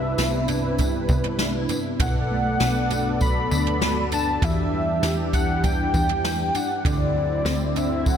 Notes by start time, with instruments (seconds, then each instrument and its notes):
Already playing: analog synth bass C2, analog synth pad C3 D4 E4 B4, clean electric guitar C3 G3 C4 E4, soft synth lead E5
0.18 analog synth bass C2, clean electric guitar B3, snare, tambourine
0.48 clean electric guitar E4, floor tom, tambourine
0.79 clean electric guitar G3, kick, floor tom, tambourine
1.09 analog synth bass C2, clean electric guitar B3, kick, tambourine
1.24 floor tom
1.39 clean electric guitar D4, snare, tambourine
1.54 clean electric guitar E4
1.69 clean electric guitar B3, floor tom, tambourine
2.00 analog synth bass B1, clean electric guitar B2, analog synth pad B3 A4 D5, soft synth lead F#5, kick, floor tom, tambourine
2.31 clean electric guitar A3
2.60 analog synth bass B1, clean electric guitar D4, snare, tambourine
2.91 clean electric guitar F#4, floor tom, tambourine
3.21 clean electric guitar F#3, soft synth lead B5, kick, tambourine
3.51 analog synth bass D2, clean electric guitar D4, tambourine
3.67 floor tom
3.81 clean electric guitar F#4, snare, tambourine
4.12 clean electric guitar D4, soft synth lead A5, floor tom, tambourine
4.42 analog synth bass E2, analog synth pad E3 D4 G4, clean electric guitar E3, soft synth lead E5, kick, floor tom, tambourine
4.73 clean electric guitar G3
5.03 analog synth bass E2, clean electric guitar D4, snare, tambourine
5.33 soft synth lead F#5, kick, floor tom, tambourine
5.63 clean electric guitar G3, soft synth lead G5, kick, floor tom, tambourine
5.94 analog synth bass E2, clean electric guitar D4, kick, tambourine
6.09 floor tom
6.24 snare, tambourine
6.55 clean electric guitar D4, soft synth lead F#5, floor tom, tambourine
6.84 analog synth bass D2, analog synth pad D3 C4 E4, clean electric guitar D3, soft synth lead D5, kick, floor tom, tambourine
7.15 clean electric guitar F#3
7.45 analog synth bass D2, clean electric guitar C4, snare, tambourine
7.76 clean electric guitar D4, soft synth lead E5, floor tom, tambourine
7.91 clean electric guitar E4
8.06 clean electric guitar F#3, soft synth lead F#5, kick, tambourine